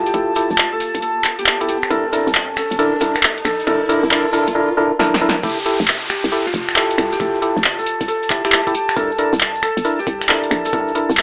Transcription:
Already playing: C2 E4 F4 G4 A4 A5, riser
0.06 G4, closed hi-hat, maracas
0.14 F1 E4 G4 A4, kick, closed hi-hat, maracas
0.35 E4 G4 A4, open hi-hat, maracas
0.50 F1, maracas
0.58 clap, closed hi-hat, maracas
0.72 A4
0.80 open hi-hat, maracas
0.94 C2, kick, closed hi-hat, maracas
1.02 A4, closed hi-hat, maracas
1.24 kick, clap, open hi-hat, maracas
1.39 G4, closed hi-hat, maracas
1.46 clap, maracas
1.61 E4 G4 A4, kick, closed hi-hat
1.68 G4, open hi-hat, maracas
1.82 finger snap, closed hi-hat, maracas
1.90 C2 D4 E4 A4 A#4, kick, closed hi-hat, maracas
2.13 D4 E4 A4 A#4, open hi-hat, maracas
2.27 C2, maracas
2.34 clap, closed hi-hat, maracas
2.57 A4, finger snap, open hi-hat, maracas
2.70 G1, closed hi-hat, maracas
2.79 D4 E4 A4 A#4, closed hi-hat, maracas
3.01 C2 D4 E4 A4 A#4, kick, open hi-hat, maracas
3.15 finger snap, closed hi-hat, maracas
3.22 clap, maracas
3.38 closed hi-hat
3.45 A#1 A4, finger snap, open hi-hat, maracas
3.60 closed hi-hat, maracas
3.67 C2 D4 E4 A4 A#4, kick, closed hi-hat, maracas
3.89 D4 E4 A4 A#4, open hi-hat, maracas
4.03 C2, maracas
4.11 D4 E4 A4 A#4, clap, closed hi-hat
4.33 D4 E4 A4 A#4, open hi-hat, maracas
4.47 G1, kick, closed hi-hat, maracas
4.55 D4 E4 A4 A#4
4.77 D4 E4 A4 A#4
4.99 D4 E4 A4 A#4, snare
5.14 snare
5.21 D4 E4 A4 A#4
5.29 snare
5.43 F1 E4 G4 A4 A5, kick, closed hi-hat, crash, downlifter, maracas
5.58 maracas
5.66 E4 G4 A4, open hi-hat
5.80 F1, maracas
5.88 clap, closed hi-hat, maracas
6.01 maracas
6.09 G4, finger snap, open hi-hat
6.24 C2, closed hi-hat, maracas
6.32 E4 G4 A4, closed hi-hat, maracas
6.46 F4, maracas
6.54 F1, kick, open hi-hat
6.68 finger snap, open hi-hat, maracas
6.76 E4 G4 A4, clap, maracas
6.91 closed hi-hat, maracas
6.98 C2, finger snap, open hi-hat
7.12 G4, closed hi-hat, maracas
7.20 F1 E4 G4 A4, kick, closed hi-hat, maracas
7.35 maracas
7.42 E4 G4 A4, open hi-hat
7.57 F1, maracas
7.64 clap, closed hi-hat, maracas
7.79 A4, maracas
7.86 open hi-hat
8.01 C2, kick, closed hi-hat, maracas
8.08 A4, closed hi-hat, maracas
8.23 closed hi-hat, maracas
8.30 E4 G4 A4, kick, clap, open hi-hat
8.45 E4 G4 A4, finger snap, closed hi-hat, maracas
8.52 clap, maracas
8.67 E4 G4 A4, kick, closed hi-hat, maracas
8.74 G4, open hi-hat
8.89 finger snap, closed hi-hat, maracas
8.96 C2 D4 E4 A4 A#4, kick, closed hi-hat, maracas
9.11 maracas
9.18 D4 E4 A4 A#4, open hi-hat
9.33 C2, maracas
9.41 clap, closed hi-hat, maracas
9.55 maracas
9.63 A4, finger snap, open hi-hat
9.77 G1, closed hi-hat, maracas
9.85 D4 E4 A4 A#4, closed hi-hat, maracas
9.99 G4, maracas
10.07 C2, kick, open hi-hat
10.21 finger snap, open hi-hat, maracas
10.29 D4 E4 A4 A#4, clap, maracas
10.44 closed hi-hat, maracas
10.51 A#1, finger snap, open hi-hat
10.65 A4, closed hi-hat, maracas
10.73 C2 D4 E4 A4 A#4, kick, closed hi-hat, maracas
10.88 maracas
10.95 D4 E4 A4 A#4, open hi-hat
11.10 C2, maracas
11.17 clap, closed hi-hat, maracas

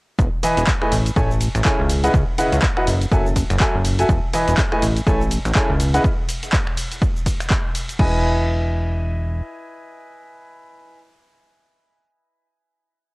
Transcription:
0.19 E1, kick, closed hi-hat, cabasa
0.43 E3 E4 B4 D#5 G#5, open hi-hat, ride, cabasa
0.57 E1, closed hi-hat, cabasa
0.67 kick, clap, open hi-hat, cabasa
0.82 A3 E4 B4 D#5 G#5, finger snap
0.92 A1, open hi-hat, ride, cabasa
1.06 closed hi-hat, cabasa
1.16 A1 A3 E4 A4 C#5 G#5, kick, closed hi-hat, cabasa
1.31 cabasa
1.41 open hi-hat, ride, cabasa
1.55 A1, finger snap, closed hi-hat, cabasa
1.65 C#3 E4 A4 C#5 G#5, kick, clap, closed hi-hat, cabasa
1.79 C#2
1.89 open hi-hat, ride, cabasa
2.04 C#3 E4 B4 D#5 F#5, closed hi-hat, cabasa
2.14 C#2, kick, closed hi-hat, cabasa
2.38 C#3 E4 B4 D#5 F#5, open hi-hat, ride, cabasa
2.52 C#2, closed hi-hat, cabasa
2.62 kick, clap, closed hi-hat, cabasa
2.77 F#3 E4 B4 D#5 F#5, finger snap
2.87 F#1, open hi-hat, ride, cabasa
3.01 closed hi-hat, cabasa
3.11 F#1 F#3 F#4 A4 E5 G#5, kick, closed hi-hat, cabasa
3.26 cabasa
3.36 kick, open hi-hat, ride, cabasa
3.50 F#1, finger snap, closed hi-hat, cabasa
3.60 F#3 F#4 A4 E5 G#5, kick, clap, closed hi-hat, cabasa
3.75 F#1
3.85 open hi-hat, ride, cabasa
3.99 F#4 A4 E5 G#5, closed hi-hat, cabasa
4.09 E1, kick, closed hi-hat, cabasa
4.34 E3 E4 B4 D#5 G#5, open hi-hat, ride, cabasa
4.48 E1, closed hi-hat, cabasa
4.58 kick, clap, open hi-hat, cabasa
4.72 A3 E4 B4 D#5 G#5, finger snap
4.82 A1, open hi-hat, ride, cabasa
4.96 closed hi-hat, cabasa
5.07 A1 A3 E4 A4 C#5 G#5, kick, closed hi-hat, cabasa
5.21 cabasa
5.31 open hi-hat, ride, cabasa
5.45 A1, finger snap, closed hi-hat, cabasa
5.55 C#3 E4 A4 C#5 G#5, kick, clap, closed hi-hat, cabasa
5.70 C#2
5.80 open hi-hat, ride, cabasa
5.94 C#3 E4 B4 D#5 F#5, closed hi-hat, cabasa
6.04 kick, closed hi-hat, cabasa
6.29 open hi-hat, ride, cabasa
6.43 closed hi-hat, cabasa
6.53 kick, clap, open hi-hat, cabasa
6.67 finger snap
6.77 open hi-hat, ride, cabasa
6.92 closed hi-hat, cabasa
7.02 kick, closed hi-hat, cabasa
7.17 cabasa
7.26 kick, open hi-hat, ride, cabasa
7.40 finger snap, closed hi-hat, cabasa
7.50 kick, clap, closed hi-hat, cabasa
7.75 open hi-hat, ride, cabasa
7.89 closed hi-hat, cabasa
7.99 E1 E4 B4 D#5 G#5, kick, crash

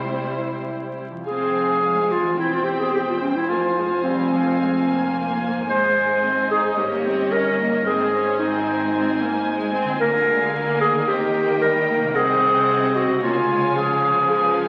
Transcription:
Already playing: C3 G3 E4 G4 C5
1.10 F2
1.15 F3
1.19 F4
1.24 C4 G#4 F5 G#5
1.28 F1 F2 C5
1.84 G#3
2.12 F4
2.21 E2
2.26 C4
2.31 G4
2.35 E1 C4 E4 A#4 G5
2.40 E2
2.53 F4
2.64 G4
2.80 G#4
2.93 G4
3.08 F4
3.21 C#4
3.33 F2 E4
3.37 C4
3.41 F4
3.46 F4 G#4 F5 G#5
3.50 F1 F2 A#3
3.78 G#3
4.03 G3 C4
4.32 F3
4.59 G#3
4.86 A#3
5.51 G#2
5.55 C4
5.60 D#4
5.64 G#4
5.69 G#1 G#2 G#3 C5 D#5
6.23 C4
6.51 D#4 G#4
6.59 G2
6.64 C#4
6.68 D#4
6.73 A#4
6.77 G1 G2 A#3 G4 C#5 D#5
7.05 C4
7.32 C#4 A#4
7.59 A#3
7.67 G#2
7.72 C4
7.76 D#4
7.81 G#4
7.85 G#1 G#2 C4 G#4 C5 G#5
8.13 C#4
8.39 C4 D#4
8.94 C4
9.21 A#3
9.49 G#3
9.75 C4
9.84 D3
9.88 A#3
9.92 F4
9.97 D2 A#3 G#4 A#4 F5
10.02 D3
10.28 G#3
10.55 A#3
10.81 G#4
10.90 D#3
10.94 A#3
10.99 D#4
11.04 G4
11.08 D#2 D#3 C4 D#5 G5
11.36 A#3
11.62 G3 A#4
11.90 A#3
11.97 C3
12.02 G#3
12.07 D#4
12.11 F#4
12.15 C2 C3 C4 G#4 D#5 F#5
12.96 F#4
13.05 C#3
13.10 G#3
13.14 C#4
13.18 F4
13.23 C#2 C#3 A#3 F4 C#5 F5 G#5
13.50 G#3
13.76 F3 G#4
14.11 C#3
14.16 G#3
14.20 B3
14.25 F4
14.29 C#2 C#3 G#4 B4 F5 G#5

